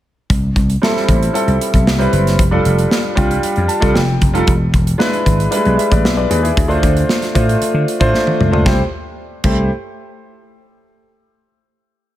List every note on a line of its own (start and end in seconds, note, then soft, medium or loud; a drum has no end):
0.30 0.49 C2 medium
0.30 kick loud
0.30 closed hi-hat medium
0.56 0.75 C2 medium
0.56 kick medium
0.56 closed hi-hat soft
0.70 closed hi-hat soft
0.82 1.29 G3 medium
0.82 1.29 C4 medium
0.82 1.30 E4 medium
0.82 1.30 A4 medium
0.82 snare medium
0.96 snare soft
1.09 1.28 A1 medium
1.09 kick medium
1.09 closed hi-hat medium
1.23 closed hi-hat soft
1.33 1.93 G3 medium
1.33 1.93 C4 medium
1.33 1.93 E4 medium
1.33 1.93 A4 medium
1.33 closed hi-hat medium
1.47 1.57 C2 medium
1.47 closed hi-hat soft
1.61 closed hi-hat medium
1.74 1.86 B1 medium
1.74 kick medium
1.74 closed hi-hat soft
1.86 2.06 C2 medium
1.86 snare medium
1.98 2.38 G3 medium
1.98 2.39 C4 medium
1.98 2.39 E4 medium
1.98 2.39 B4 medium
1.98 closed hi-hat soft
2.13 2.39 F#1 medium
2.13 closed hi-hat medium
2.27 snare soft
2.27 closed hi-hat soft
2.39 2.58 F1 loud
2.39 kick loud
2.39 closed hi-hat medium
2.51 3.11 G3 medium
2.51 3.11 D4 medium
2.51 3.11 F4 medium
2.51 3.11 A4 medium
2.65 2.84 F1 medium
2.65 closed hi-hat medium
2.79 closed hi-hat soft
2.91 snare medium
3.15 3.37 C2 medium
3.15 3.75 G3 medium
3.15 3.76 D4 medium
3.15 3.76 F4 medium
3.15 3.76 G4 medium
3.15 kick medium
3.15 closed hi-hat medium
3.31 closed hi-hat soft
3.43 muted slap bass stroke soft
3.43 closed hi-hat medium
3.56 3.67 F2 medium
3.56 closed hi-hat soft
3.68 3.93 A5 medium
3.68 closed hi-hat medium
3.80 3.92 C2 medium
3.80 3.94 G3 medium
3.80 3.95 D4 medium
3.80 3.95 F4 medium
3.80 3.95 A4 medium
3.80 kick medium
3.80 closed hi-hat soft
3.94 4.15 F1 medium
3.94 4.44 G5 medium
3.94 snare loud
4.22 4.41 F1 medium
4.22 kick medium
4.22 closed hi-hat medium
4.33 4.47 G3 medium
4.33 4.47 D#4 medium
4.33 4.47 F4 medium
4.33 4.48 A4 medium
4.33 closed hi-hat soft
4.47 4.67 E1 loud
4.47 kick loud
4.47 closed hi-hat medium
4.74 4.93 E1 medium
4.74 kick medium
4.74 closed hi-hat soft
4.87 closed hi-hat soft
4.98 5.46 G#3 medium
4.98 5.47 D4 medium
4.98 5.47 E4 medium
4.98 5.47 B4 medium
4.98 snare loud
5.14 closed hi-hat soft
5.26 5.46 G#1 medium
5.26 kick medium
5.26 closed hi-hat medium
5.40 closed hi-hat soft
5.51 5.58 G3 medium
5.51 6.11 D4 medium
5.51 5.78 E4 medium
5.51 5.79 B4 medium
5.51 closed hi-hat medium
5.57 6.14 G#3 medium
5.65 5.75 B1 medium
5.65 closed hi-hat soft
5.77 5.90 E5 medium
5.77 closed hi-hat medium
5.91 6.05 A1 medium
5.91 6.04 B4 soft
5.91 6.04 D5 medium
5.91 kick medium
5.91 closed hi-hat medium
6.04 6.24 B1 medium
6.04 6.17 E5 medium
6.04 snare loud
6.17 6.28 B4 medium
6.17 6.30 D5 medium
6.30 6.50 D#2 medium
6.30 6.41 G#4 medium
6.30 6.43 B4 medium
6.30 closed hi-hat medium
6.43 6.69 E4 medium
6.43 6.68 G#4 medium
6.43 closed hi-hat soft
6.57 6.77 D2 loud
6.57 kick loud
6.57 closed hi-hat medium
6.68 7.28 A3 medium
6.68 7.28 D4 medium
6.68 7.29 F4 medium
6.68 7.29 C5 medium
6.68 closed hi-hat soft
6.83 7.02 D2 medium
6.83 kick medium
6.83 closed hi-hat medium
6.97 closed hi-hat soft
7.09 snare medium
7.22 snare soft
7.22 closed hi-hat soft
7.35 7.55 A2 medium
7.35 7.94 A3 medium
7.35 7.94 D4 medium
7.35 7.94 F4 medium
7.35 7.95 C5 medium
7.35 kick medium
7.35 closed hi-hat medium
7.49 closed hi-hat soft
7.62 muted slap bass stroke soft
7.62 closed hi-hat medium
7.74 7.84 D3 loud
7.88 closed hi-hat medium
8.00 8.11 A2 medium
8.00 8.48 A3 medium
8.00 8.48 D4 medium
8.00 8.48 F4 medium
8.00 8.48 C5 medium
8.00 kick medium
8.00 closed hi-hat soft
8.14 snare soft
8.27 high tom medium
8.40 8.60 C#2 medium
8.40 mid tom medium
8.51 8.64 A3 medium
8.51 8.66 D4 medium
8.51 8.66 F4 medium
8.51 8.65 C5 medium
8.51 floor tom medium
8.66 8.81 C2 medium
8.66 8.81 A3 medium
8.66 8.81 E4 medium
8.66 8.81 G4 medium
8.66 8.81 C5 medium
8.66 kick loud
8.66 snare medium
9.44 9.69 C2 medium
9.44 9.69 A3 medium
9.44 9.69 E4 medium
9.44 9.69 G4 medium
9.44 9.69 C5 medium
9.44 kick loud
9.44 crash medium